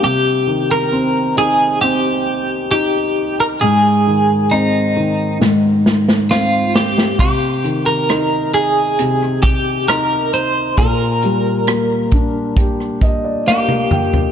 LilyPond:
<<
  \new Staff \with { instrumentName = "Clean electric guitar" } { \time 4/4 \key c \minor \tempo 4 = 67 g'8. bes'8. aes'8 g'4 g'8. bes'16 | aes'4 ees'4 r4 f'8 g'8 | g'8. bes'8. aes'4 g'8 bes'8 c''8 | bes'2. g'4 | }
  \new Staff \with { instrumentName = "Grand piano" } { \time 4/4 \key c \minor r1 | r1 | r1 | r2 r8 ees''16 d''16 f''8 g''8 | }
  \new Staff \with { instrumentName = "Grand piano" } { \time 4/4 \key c \minor c8 ees8 c'8 ees'8 c'4 ees'4 | aes,8 ees8 c'8 ees8 aes,4 c'4 | c8 ees8 ees'4 c4 ees'4 | bes,8 g8 bes8 d'8 g'4 bes4 | }
  \new DrumStaff \with { instrumentName = "Drums" } \drummode { \time 4/4 r4 r4 r4 r4 | r4 r4 sn8 sn16 sn16 sn8 sn16 sn16 | <hh bd>8 hh8 <hh ss>8 hh8 hh16 ss16 <hh bd>8 <hh ss>8 hh8 | <hh bd>8 hh8 <hh ss>8 <hh bd>8 <hh bd>16 ss16 <hh bd>8 sn16 tommh16 toml16 tomfh16 | }
>>